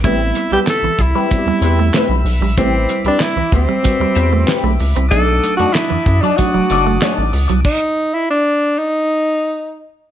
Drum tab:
CC |----------------|----------------|----------------|x---------------|
HH |x-x-x-x-x-x-x-o-|x-xxx-x-x-x-x-ox|x-xxx-x-x-x-x-ox|----------------|
CP |----x-------x---|----x-------x---|----x-------x---|----------------|
SD |----o-------o---|----o-------o---|----o-------o---|----------------|
BD |o-----o-o-------|o-----o-o-------|o-----o-o-------|o---------------|